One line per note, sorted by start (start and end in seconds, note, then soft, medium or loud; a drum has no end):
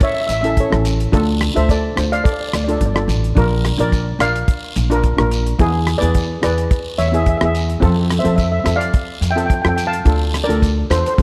0.00 0.15 C#4 medium
0.00 0.16 E4 medium
0.00 0.16 A4 medium
0.00 0.10 C#5 medium
0.00 0.11 E5 loud
0.00 kick loud
0.00 closed hi-hat medium
0.00 long guiro medium
0.14 0.20 E5 medium
0.21 0.26 E5 medium
0.27 0.63 A1 medium
0.27 0.31 E5 medium
0.27 closed hi-hat loud
0.27 short guiro medium
0.32 0.40 E5 medium
0.41 0.59 C#4 medium
0.41 0.60 E4 medium
0.41 0.60 A4 medium
0.41 0.48 E5 medium
0.41 closed hi-hat medium
0.50 0.55 E5 medium
0.57 0.99 A4 medium
0.57 0.99 C#5 medium
0.57 kick medium
0.57 closed hi-hat medium
0.70 1.04 A1 medium
0.70 0.96 C#4 medium
0.70 0.97 E4 medium
0.70 0.97 A4 medium
0.70 cross-stick medium
0.85 closed hi-hat medium
0.85 short guiro loud
1.00 closed hi-hat medium
1.12 1.47 D2 loud
1.12 1.38 D4 loud
1.12 1.38 F4 medium
1.12 1.39 A4 loud
1.12 kick medium
1.12 closed hi-hat medium
1.12 long guiro medium
1.41 cross-stick medium
1.41 closed hi-hat medium
1.54 1.88 D2 loud
1.54 1.80 D4 medium
1.54 1.80 F4 medium
1.54 1.81 A4 medium
1.54 1.69 C5 medium
1.54 1.68 E5 medium
1.54 closed hi-hat medium
1.69 2.10 A4 medium
1.69 2.11 D5 medium
1.69 kick medium
1.69 closed hi-hat medium
1.69 short guiro medium
1.96 2.19 D2 medium
1.96 2.39 D4 medium
1.96 2.40 F4 medium
1.96 2.41 C5 medium
1.96 cross-stick medium
1.96 closed hi-hat medium
1.96 short guiro medium
2.12 2.23 D5 medium
2.12 2.24 F5 loud
2.12 closed hi-hat medium
2.24 2.32 A4 medium
2.24 2.32 D5 medium
2.24 kick loud
2.24 closed hi-hat medium
2.24 long guiro medium
2.33 2.40 D5 medium
2.41 2.47 D5 medium
2.49 2.54 D5 medium
2.53 2.75 D2 medium
2.53 2.63 D5 medium
2.53 cross-stick medium
2.53 closed hi-hat medium
2.53 short guiro medium
2.64 2.84 D4 medium
2.64 2.70 D5 medium
2.68 2.84 F4 medium
2.68 2.84 A4 medium
2.68 2.76 D5 medium
2.68 closed hi-hat medium
2.78 3.06 G1 medium
2.78 2.85 D5 medium
2.78 kick medium
2.78 closed hi-hat medium
2.86 2.93 D5 medium
2.94 3.20 D4 medium
2.94 3.21 F4 medium
2.94 3.21 A4 medium
2.94 3.00 D5 medium
2.94 cross-stick medium
3.08 3.33 A1 medium
3.08 closed hi-hat medium
3.08 short guiro medium
3.24 closed hi-hat medium
3.35 3.71 A#1 loud
3.35 3.61 D4 loud
3.35 3.62 F4 medium
3.35 3.63 A#4 loud
3.35 kick loud
3.35 closed hi-hat medium
3.35 long guiro medium
3.65 cross-stick medium
3.65 closed hi-hat medium
3.78 4.11 A#1 loud
3.78 4.04 D4 medium
3.78 4.04 F4 medium
3.78 4.05 A#4 medium
3.78 4.18 A#4 medium
3.78 4.20 D5 loud
3.78 closed hi-hat medium
3.92 kick medium
3.92 closed hi-hat medium
3.92 short guiro medium
4.19 4.42 A#1 medium
4.19 4.63 D4 medium
4.19 4.63 F4 medium
4.19 4.64 A#4 medium
4.19 5.29 D5 medium
4.19 5.28 F5 loud
4.19 cross-stick loud
4.19 closed hi-hat loud
4.19 short guiro medium
4.36 closed hi-hat medium
4.48 kick loud
4.48 closed hi-hat medium
4.48 long guiro medium
4.76 5.10 A#1 medium
4.76 closed hi-hat loud
4.76 short guiro medium
4.90 5.07 D4 loud
4.90 5.07 F4 medium
4.90 5.08 A#4 loud
4.90 closed hi-hat medium
5.04 kick medium
5.04 closed hi-hat medium
5.17 5.51 A#1 medium
5.17 5.43 D4 medium
5.17 5.44 F4 medium
5.17 5.44 A#4 loud
5.17 cross-stick loud
5.31 closed hi-hat medium
5.31 short guiro medium
5.47 closed hi-hat medium
5.59 5.94 E2 loud
5.59 5.85 B3 loud
5.59 5.85 E4 medium
5.59 5.86 G#4 loud
5.59 kick loud
5.59 closed hi-hat medium
5.59 long guiro medium
5.87 cross-stick medium
5.87 closed hi-hat medium
5.98 6.27 B3 medium
5.98 6.27 E4 medium
5.98 6.41 B4 medium
5.98 6.42 D5 medium
5.98 closed hi-hat medium
6.02 6.35 E2 loud
6.02 6.28 G#4 medium
6.14 kick medium
6.14 closed hi-hat medium
6.14 short guiro medium
6.41 6.66 E2 medium
6.41 6.86 B3 medium
6.41 6.86 E4 medium
6.41 6.86 G#4 medium
6.41 6.96 B4 medium
6.41 6.96 D5 medium
6.41 cross-stick medium
6.41 closed hi-hat medium
6.41 short guiro medium
6.58 closed hi-hat medium
6.71 kick loud
6.71 closed hi-hat medium
6.71 long guiro medium
6.98 7.33 E2 medium
6.98 7.07 C#5 medium
6.98 7.06 E5 loud
6.98 closed hi-hat medium
6.98 short guiro medium
7.08 7.29 B3 medium
7.08 7.14 E5 medium
7.13 7.30 E4 medium
7.13 7.30 G#4 medium
7.13 7.22 E5 medium
7.13 closed hi-hat medium
7.23 7.28 E5 medium
7.23 kick medium
7.23 closed hi-hat medium
7.29 7.36 E5 medium
7.37 7.67 B3 medium
7.37 7.44 E5 medium
7.37 cross-stick loud
7.42 7.75 E2 medium
7.42 7.67 E4 medium
7.42 7.68 G#4 medium
7.42 7.52 E5 medium
7.55 closed hi-hat medium
7.55 short guiro medium
7.69 closed hi-hat medium
7.80 8.17 F2 loud
7.80 8.07 C4 loud
7.80 8.08 F4 loud
7.80 8.08 A4 loud
7.80 kick loud
7.80 closed hi-hat medium
7.80 long guiro medium
8.10 cross-stick medium
8.10 closed hi-hat medium
8.19 8.28 C5 medium
8.19 8.27 E5 medium
8.23 8.58 F2 loud
8.23 8.50 C4 medium
8.23 8.50 F4 medium
8.23 8.51 A4 medium
8.23 closed hi-hat medium
8.28 8.35 E5 medium
8.36 8.42 E5 medium
8.36 kick medium
8.36 closed hi-hat medium
8.36 short guiro medium
8.43 8.51 E5 medium
8.52 8.58 E5 medium
8.60 8.64 E5 medium
8.64 8.88 F2 medium
8.64 9.09 C4 medium
8.64 9.09 F4 medium
8.64 9.10 A4 medium
8.64 8.73 E5 medium
8.64 cross-stick medium
8.64 closed hi-hat medium
8.64 short guiro medium
8.76 9.03 D5 medium
8.76 9.02 F5 medium
8.81 closed hi-hat medium
8.94 kick loud
8.94 closed hi-hat medium
8.94 long guiro medium
9.21 9.56 F2 medium
9.21 closed hi-hat loud
9.21 short guiro medium
9.31 9.40 E5 medium
9.31 9.36 G5 medium
9.36 9.53 C4 medium
9.36 9.53 F4 medium
9.36 9.53 A4 loud
9.36 9.45 G5 medium
9.36 closed hi-hat medium
9.46 9.53 G5 medium
9.50 kick medium
9.50 closed hi-hat medium
9.54 9.61 G5 medium
9.62 9.97 F2 medium
9.62 9.90 C4 medium
9.62 9.91 F4 medium
9.62 9.67 G5 medium
9.62 cross-stick loud
9.66 9.91 A4 medium
9.66 9.75 G5 medium
9.76 9.85 G5 medium
9.76 closed hi-hat loud
9.76 short guiro medium
9.87 10.14 F5 medium
9.87 10.14 A5 loud
9.93 closed hi-hat medium
10.05 10.40 D2 loud
10.05 10.31 D4 medium
10.05 10.32 F4 medium
10.05 10.32 A4 medium
10.05 kick loud
10.05 closed hi-hat medium
10.05 long guiro medium
10.34 cross-stick medium
10.34 closed hi-hat medium
10.44 10.74 D4 medium
10.44 10.88 A#4 medium
10.44 10.92 D5 loud
10.49 10.82 D2 loud
10.49 10.74 F4 medium
10.49 10.75 A4 medium
10.49 closed hi-hat medium
10.62 kick medium
10.62 closed hi-hat medium
10.62 short guiro medium
10.90 11.02 E2 medium
10.90 11.18 D4 medium
10.90 11.18 F4 medium
10.90 10.98 A4 medium
10.90 11.19 A4 medium
10.90 10.97 C5 medium
10.90 cross-stick medium
10.90 closed hi-hat medium
10.90 short guiro medium
10.99 11.06 C5 medium
11.06 11.13 C5 medium
11.06 closed hi-hat medium
11.14 11.22 C4 medium
11.14 11.21 C5 medium
11.18 11.22 F2 loud
11.18 11.22 F4 medium
11.18 kick loud
11.18 closed hi-hat medium
11.18 long guiro medium